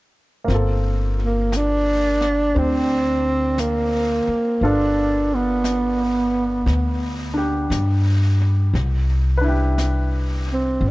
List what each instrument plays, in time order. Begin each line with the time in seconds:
0.44 upright bass G1, grand piano A#3 C4
0.49 grand piano F4, brush sweep, snare
0.55 grand piano A4
1.22 tenor saxophone A#3
1.52 tenor saxophone D4, brush sweep, snare, hi-hat pedal
2.21 snare
2.55 upright bass D2, grand piano C4 D4 G4, tenor saxophone C4, brush sweep
3.58 tenor saxophone A#3, brush sweep, snare, hi-hat pedal
4.28 muted upright bass stroke
4.61 upright bass G1, grand piano B3 D4 F4 A4, brush sweep
4.65 tenor saxophone D4
5.34 tenor saxophone B3
5.64 brush sweep, snare, hi-hat pedal
6.66 upright bass D2, brush sweep, snare
7.34 grand piano D4 G4
7.70 upright bass G2, brush sweep, snare, hi-hat pedal
8.74 upright bass C2, brush sweep, snare
9.38 grand piano D4 B4
9.44 grand piano E4 G4
9.78 brush sweep, snare, hi-hat pedal
10.53 tenor saxophone C4
10.81 upright bass G1, brush sweep
10.88 tenor saxophone D4